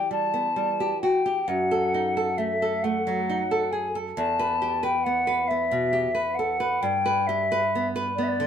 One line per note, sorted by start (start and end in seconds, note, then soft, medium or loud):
0.00 1.43 E3 soft
0.00 0.25 G4 soft
0.00 0.11 G5 soft
0.11 0.48 G3 soft
0.11 1.01 A5 soft
0.34 0.70 B3 soft
0.56 0.93 G3 soft
0.80 1.03 G4 soft
1.02 1.25 F#4 soft
1.02 1.49 G5 soft
1.26 1.48 G4 soft
1.47 4.12 F#2 soft
1.47 2.39 F#5 soft
1.71 2.07 A4 soft
1.94 2.29 D#4 soft
2.17 2.52 A4 soft
2.38 2.73 A3 soft
2.38 2.85 E5 soft
2.62 2.96 A4 soft
2.83 3.18 A3 soft
2.83 3.73 F#5 medium
3.07 3.41 F#3 soft
3.30 3.64 D#4 soft
3.51 3.86 A4 soft
3.72 3.94 G#4 soft
3.72 3.97 G#5 soft
3.95 4.17 A4 soft
4.17 6.78 E2 soft
4.17 4.86 A5 medium
4.39 4.74 B4 soft
4.62 4.96 G4 soft
4.83 5.18 B4 soft
4.83 5.05 G5 medium
5.04 5.40 B3 soft
5.04 5.49 F#5 medium
5.27 5.62 B4 soft
5.48 5.84 B3 soft
5.48 6.36 E5 medium
5.71 6.06 B2 soft
5.93 6.14 G4 soft
6.15 6.39 B4 soft
6.35 6.83 F#5 medium
6.39 6.60 A4 soft
6.60 6.82 B4 soft
6.82 8.47 G2 soft
6.82 7.29 G5 medium
7.06 7.41 B4 soft
7.27 7.64 G4 soft
7.27 7.89 E5 medium
7.52 7.86 B4 soft
7.75 8.09 B3 soft
7.96 8.30 B4 soft
8.16 8.47 B3 soft
8.16 8.25 D5 soft
8.23 8.30 E5 soft
8.28 8.47 D5 soft
8.40 8.47 D3 soft